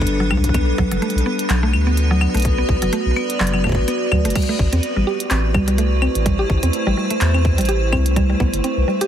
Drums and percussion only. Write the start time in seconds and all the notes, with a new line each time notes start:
0.02 kick
0.07 closed hi-hat
0.31 kick, claves
0.37 kick
0.44 kick, closed hi-hat
0.49 kick
0.54 kick, closed hi-hat, claves
0.78 kick
0.92 closed hi-hat
1.02 closed hi-hat
1.10 closed hi-hat
1.18 closed hi-hat
1.39 closed hi-hat
1.50 clap, closed hi-hat
1.74 claves
1.97 closed hi-hat
2.21 claves
2.35 closed hi-hat
2.37 closed hi-hat
2.40 closed hi-hat
2.42 closed hi-hat
2.45 kick, closed hi-hat
2.69 kick
2.82 closed hi-hat
2.93 closed hi-hat
3.16 claves
3.30 closed hi-hat
3.40 clap
3.47 closed hi-hat
3.54 claves
3.64 kick, claves
3.67 kick
3.69 kick
3.72 kick
3.75 kick
3.88 closed hi-hat
4.12 kick, claves
4.25 closed hi-hat
4.30 closed hi-hat
4.36 kick, closed hi-hat, crash, claves
4.42 closed hi-hat
4.59 kick
4.73 closed hi-hat
4.83 closed hi-hat
5.20 closed hi-hat
5.31 clap, closed hi-hat
5.54 kick, claves
5.68 closed hi-hat
5.78 closed hi-hat
6.02 claves
6.15 closed hi-hat
6.26 kick, closed hi-hat
6.50 kick
6.63 closed hi-hat
6.73 closed hi-hat
7.10 closed hi-hat
7.21 clap, closed hi-hat
7.34 claves
7.45 kick
7.58 closed hi-hat
7.61 closed hi-hat
7.65 closed hi-hat
7.69 closed hi-hat
7.93 kick, claves
8.06 closed hi-hat
8.16 kick, closed hi-hat, claves
8.40 kick
8.54 closed hi-hat
8.64 closed hi-hat
9.01 closed hi-hat